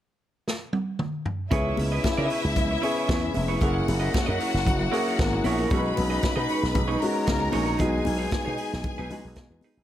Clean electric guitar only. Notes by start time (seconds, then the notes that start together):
1.51 E4 B4 C#5
1.79 muted clean electric guitar stroke
1.92 E4 B4 D#5
2.04 muted clean electric guitar stroke
2.18 E4 B4 D#5
2.30 E4 B4 C#5
2.42 muted clean electric guitar stroke
2.56 muted clean electric guitar stroke
2.71 muted clean electric guitar stroke
2.82 E4 B4 C#5
2.97 E4 B4 C#5
3.08 E4 B4 C#5
3.23 muted clean electric guitar stroke
3.35 muted clean electric guitar stroke
3.48 E4 B4 C#5
3.61 E4 A#4 C#5
3.88 muted clean electric guitar stroke
4.00 E4 A#4 D#5
4.14 muted clean electric guitar stroke
4.26 E4 A#4 D#5
4.39 E4 A#4 C#5
4.53 muted clean electric guitar stroke
4.65 muted clean electric guitar stroke
4.79 muted clean electric guitar stroke
4.92 E4 A#4 C#5
5.07 E4 A#4 C#5
5.33 muted clean electric guitar stroke
5.44 E4 A#4 C#5
5.59 E4 A#4 C#5
5.71 D#4 G#4 C#5
5.96 muted clean electric guitar stroke
6.10 D#4 G#4 D#5
6.22 muted clean electric guitar stroke
6.36 D#4 G#4 D#5
6.49 D#4 G#4 C#5
6.63 muted clean electric guitar stroke
6.75 muted clean electric guitar stroke
6.88 D#4 G#4 C#5
7.01 muted clean electric guitar stroke
7.14 muted clean electric guitar stroke
7.27 muted clean electric guitar stroke
7.40 muted clean electric guitar stroke
7.52 D#4 G#4 C#5
7.66 D#4 G#4 C#5
7.78 D#4 G#4 B4
8.04 muted clean electric guitar stroke
8.17 D#4 G#4 C#5
8.31 muted clean electric guitar stroke
8.45 D#4 G#4 C#5
8.57 D#4 G#4 B4
8.72 muted clean electric guitar stroke
8.85 muted clean electric guitar stroke
8.98 D#4 G#4 B4
9.11 D#4 G#4 B4
9.26 muted clean electric guitar stroke
9.38 muted clean electric guitar stroke
9.52 muted clean electric guitar stroke
9.64 D#4 G#4 B4
9.77 D#4 G#4 B4